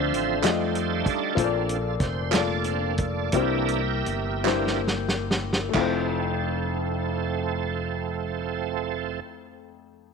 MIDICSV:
0, 0, Header, 1, 5, 480
1, 0, Start_track
1, 0, Key_signature, -1, "major"
1, 0, Tempo, 630252
1, 1044, Time_signature, 6, 3, 24, 8
1, 2017, Tempo, 705882
1, 2977, Tempo, 794702
1, 3457, Tempo, 886263
1, 3937, Tempo, 941915
1, 6177, End_track
2, 0, Start_track
2, 0, Title_t, "Upright piano"
2, 0, Program_c, 0, 0
2, 0, Control_c, 0, 64, 127
2, 0, Note_on_c, 0, 50, 58
2, 0, Note_on_c, 0, 60, 77
2, 0, Note_on_c, 0, 65, 63
2, 0, Note_on_c, 0, 69, 62
2, 0, Note_on_c, 0, 74, 80
2, 184, Note_off_c, 0, 60, 0
2, 189, Note_off_c, 0, 69, 0
2, 196, Note_off_c, 0, 74, 0
2, 211, Note_off_c, 0, 65, 0
2, 301, Note_off_c, 0, 50, 0
2, 319, Note_on_c, 0, 57, 72
2, 326, Note_on_c, 0, 65, 70
2, 327, Note_on_c, 0, 67, 66
2, 338, Note_on_c, 0, 75, 78
2, 343, Control_c, 0, 64, 0
2, 452, Control_c, 0, 64, 127
2, 895, Note_off_c, 0, 57, 0
2, 899, Note_off_c, 0, 65, 0
2, 899, Note_off_c, 0, 67, 0
2, 904, Note_off_c, 0, 75, 0
2, 1030, Note_on_c, 0, 58, 75
2, 1039, Note_on_c, 0, 46, 59
2, 1039, Note_on_c, 0, 65, 66
2, 1043, Note_on_c, 0, 69, 65
2, 1051, Note_on_c, 0, 72, 65
2, 1055, Control_c, 0, 64, 0
2, 1097, Note_off_c, 0, 72, 0
2, 1098, Note_on_c, 0, 74, 83
2, 1197, Control_c, 0, 64, 127
2, 1615, Note_off_c, 0, 58, 0
2, 1619, Note_off_c, 0, 65, 0
2, 1621, Note_off_c, 0, 69, 0
2, 1649, Note_off_c, 0, 74, 0
2, 1736, Note_off_c, 0, 46, 0
2, 1759, Note_on_c, 0, 58, 59
2, 1766, Note_on_c, 0, 65, 55
2, 1770, Note_on_c, 0, 69, 55
2, 1778, Note_on_c, 0, 74, 70
2, 2336, Note_off_c, 0, 58, 0
2, 2339, Note_off_c, 0, 65, 0
2, 2341, Note_off_c, 0, 69, 0
2, 2344, Note_off_c, 0, 74, 0
2, 2487, Note_on_c, 0, 58, 78
2, 2491, Control_c, 0, 64, 0
2, 2491, Note_on_c, 0, 62, 51
2, 2494, Note_on_c, 0, 48, 60
2, 2496, Note_on_c, 0, 67, 69
2, 2504, Note_on_c, 0, 72, 77
2, 2536, Note_off_c, 0, 62, 0
2, 2536, Note_on_c, 0, 64, 68
2, 2616, Control_c, 0, 64, 127
2, 3073, Note_off_c, 0, 58, 0
2, 3077, Note_off_c, 0, 67, 0
2, 3080, Note_off_c, 0, 72, 0
2, 3094, Note_off_c, 0, 64, 0
2, 3193, Note_off_c, 0, 48, 0
2, 3207, Note_on_c, 0, 58, 69
2, 3212, Note_on_c, 0, 64, 65
2, 3219, Note_on_c, 0, 67, 65
2, 3224, Note_on_c, 0, 72, 81
2, 3786, Note_off_c, 0, 58, 0
2, 3788, Note_off_c, 0, 64, 0
2, 3791, Note_off_c, 0, 67, 0
2, 3793, Note_off_c, 0, 72, 0
2, 3911, Note_on_c, 0, 57, 73
2, 3933, Note_on_c, 0, 64, 61
2, 3941, Note_on_c, 0, 41, 68
2, 3944, Control_c, 0, 64, 0
2, 3949, Note_on_c, 0, 65, 70
2, 3967, Note_on_c, 0, 72, 80
2, 4038, Control_c, 0, 64, 127
2, 5670, Note_off_c, 0, 57, 0
2, 5691, Note_off_c, 0, 64, 0
2, 5699, Note_off_c, 0, 41, 0
2, 5707, Note_off_c, 0, 65, 0
2, 5725, Note_off_c, 0, 72, 0
2, 6177, End_track
3, 0, Start_track
3, 0, Title_t, "Tonewheel organ"
3, 0, Program_c, 1, 16
3, 0, Note_on_c, 1, 53, 53
3, 0, Note_on_c, 1, 60, 43
3, 0, Note_on_c, 1, 65, 54
3, 0, Note_on_c, 1, 69, 54
3, 0, Note_on_c, 1, 72, 79
3, 0, Note_on_c, 1, 76, 53
3, 299, Note_off_c, 1, 60, 0
3, 300, Note_off_c, 1, 53, 0
3, 303, Note_off_c, 1, 76, 0
3, 329, Note_on_c, 1, 55, 53
3, 338, Note_on_c, 1, 57, 48
3, 344, Note_on_c, 1, 63, 62
3, 776, Note_off_c, 1, 69, 0
3, 779, Note_off_c, 1, 65, 0
3, 794, Note_on_c, 1, 69, 96
3, 796, Note_on_c, 1, 65, 58
3, 797, Note_on_c, 1, 62, 61
3, 843, Note_off_c, 1, 72, 0
3, 1011, Note_off_c, 1, 55, 0
3, 1016, Note_off_c, 1, 57, 0
3, 1018, Note_off_c, 1, 62, 0
3, 1019, Note_off_c, 1, 63, 0
3, 1021, Note_on_c, 1, 58, 48
3, 1027, Note_on_c, 1, 62, 55
3, 1030, Note_on_c, 1, 60, 45
3, 1350, Note_off_c, 1, 58, 0
3, 1353, Note_off_c, 1, 62, 0
3, 1355, Note_off_c, 1, 60, 0
3, 1487, Note_off_c, 1, 69, 0
3, 1488, Note_off_c, 1, 65, 0
3, 1525, Note_on_c, 1, 72, 78
3, 1774, Note_on_c, 1, 69, 68
3, 1777, Note_off_c, 1, 72, 0
3, 1779, Note_on_c, 1, 65, 65
3, 1780, Note_on_c, 1, 74, 93
3, 2017, Note_on_c, 1, 58, 45
3, 2018, Note_on_c, 1, 60, 43
3, 2020, Note_on_c, 1, 62, 52
3, 2223, Note_off_c, 1, 58, 0
3, 2224, Note_off_c, 1, 60, 0
3, 2225, Note_off_c, 1, 62, 0
3, 2457, Note_off_c, 1, 69, 0
3, 2459, Note_off_c, 1, 65, 0
3, 2478, Note_on_c, 1, 52, 51
3, 2484, Note_on_c, 1, 58, 44
3, 2489, Note_on_c, 1, 67, 61
3, 2489, Note_on_c, 1, 70, 59
3, 2489, Note_on_c, 1, 76, 86
3, 2493, Note_on_c, 1, 62, 56
3, 2507, Note_off_c, 1, 74, 0
3, 2805, Note_off_c, 1, 52, 0
3, 2809, Note_off_c, 1, 58, 0
3, 2813, Note_off_c, 1, 62, 0
3, 3204, Note_on_c, 1, 52, 45
3, 3205, Note_on_c, 1, 58, 43
3, 3207, Note_on_c, 1, 62, 50
3, 3429, Note_off_c, 1, 52, 0
3, 3430, Note_off_c, 1, 58, 0
3, 3431, Note_off_c, 1, 62, 0
3, 3436, Note_off_c, 1, 70, 0
3, 3436, Note_off_c, 1, 76, 0
3, 3437, Note_off_c, 1, 67, 0
3, 3940, Note_on_c, 1, 60, 53
3, 3941, Note_on_c, 1, 53, 59
3, 3941, Note_on_c, 1, 69, 67
3, 3944, Note_on_c, 1, 57, 50
3, 5698, Note_off_c, 1, 53, 0
3, 5698, Note_off_c, 1, 60, 0
3, 5699, Note_off_c, 1, 69, 0
3, 5701, Note_off_c, 1, 57, 0
3, 6177, End_track
4, 0, Start_track
4, 0, Title_t, "Fingered electric bass"
4, 0, Program_c, 2, 33
4, 0, Note_on_c, 2, 38, 88
4, 95, Note_off_c, 2, 38, 0
4, 95, Note_on_c, 2, 33, 76
4, 314, Note_off_c, 2, 33, 0
4, 328, Note_on_c, 2, 41, 89
4, 774, Note_off_c, 2, 41, 0
4, 1042, Note_on_c, 2, 34, 88
4, 1493, Note_off_c, 2, 34, 0
4, 1521, Note_on_c, 2, 29, 93
4, 2453, Note_off_c, 2, 29, 0
4, 2481, Note_on_c, 2, 36, 102
4, 2950, Note_off_c, 2, 36, 0
4, 2980, Note_on_c, 2, 31, 79
4, 3917, Note_off_c, 2, 31, 0
4, 3939, Note_on_c, 2, 29, 90
4, 5697, Note_off_c, 2, 29, 0
4, 6177, End_track
5, 0, Start_track
5, 0, Title_t, "Drums"
5, 105, Note_on_c, 9, 42, 45
5, 182, Note_off_c, 9, 42, 0
5, 331, Note_on_c, 9, 39, 90
5, 331, Note_on_c, 9, 42, 69
5, 341, Note_on_c, 9, 38, 100
5, 407, Note_off_c, 9, 39, 0
5, 407, Note_off_c, 9, 42, 0
5, 417, Note_off_c, 9, 38, 0
5, 572, Note_on_c, 9, 42, 46
5, 648, Note_off_c, 9, 42, 0
5, 807, Note_on_c, 9, 36, 84
5, 808, Note_on_c, 9, 42, 49
5, 883, Note_off_c, 9, 36, 0
5, 884, Note_off_c, 9, 42, 0
5, 1044, Note_on_c, 9, 36, 89
5, 1049, Note_on_c, 9, 42, 79
5, 1120, Note_off_c, 9, 36, 0
5, 1125, Note_off_c, 9, 42, 0
5, 1288, Note_on_c, 9, 42, 46
5, 1364, Note_off_c, 9, 42, 0
5, 1522, Note_on_c, 9, 42, 43
5, 1525, Note_on_c, 9, 36, 75
5, 1535, Note_on_c, 9, 38, 30
5, 1598, Note_off_c, 9, 42, 0
5, 1601, Note_off_c, 9, 36, 0
5, 1611, Note_off_c, 9, 38, 0
5, 1767, Note_on_c, 9, 39, 89
5, 1770, Note_on_c, 9, 42, 71
5, 1780, Note_on_c, 9, 38, 104
5, 1843, Note_off_c, 9, 39, 0
5, 1846, Note_off_c, 9, 42, 0
5, 1856, Note_off_c, 9, 38, 0
5, 2012, Note_on_c, 9, 42, 45
5, 2081, Note_off_c, 9, 42, 0
5, 2240, Note_on_c, 9, 42, 46
5, 2246, Note_on_c, 9, 36, 82
5, 2308, Note_off_c, 9, 42, 0
5, 2314, Note_off_c, 9, 36, 0
5, 2474, Note_on_c, 9, 42, 75
5, 2481, Note_on_c, 9, 36, 93
5, 2542, Note_off_c, 9, 42, 0
5, 2549, Note_off_c, 9, 36, 0
5, 2721, Note_on_c, 9, 42, 49
5, 2789, Note_off_c, 9, 42, 0
5, 2978, Note_on_c, 9, 42, 46
5, 3038, Note_off_c, 9, 42, 0
5, 3213, Note_on_c, 9, 39, 87
5, 3223, Note_on_c, 9, 38, 55
5, 3274, Note_off_c, 9, 39, 0
5, 3283, Note_off_c, 9, 38, 0
5, 3346, Note_on_c, 9, 38, 52
5, 3407, Note_off_c, 9, 38, 0
5, 3468, Note_on_c, 9, 38, 66
5, 3522, Note_off_c, 9, 38, 0
5, 3581, Note_on_c, 9, 38, 65
5, 3636, Note_off_c, 9, 38, 0
5, 3702, Note_on_c, 9, 38, 83
5, 3757, Note_off_c, 9, 38, 0
5, 3821, Note_on_c, 9, 38, 80
5, 3875, Note_off_c, 9, 38, 0
5, 3934, Note_on_c, 9, 52, 69
5, 3938, Note_on_c, 9, 39, 71
5, 3939, Note_on_c, 9, 36, 83
5, 3985, Note_off_c, 9, 52, 0
5, 3989, Note_off_c, 9, 36, 0
5, 3989, Note_off_c, 9, 39, 0
5, 6177, End_track
0, 0, End_of_file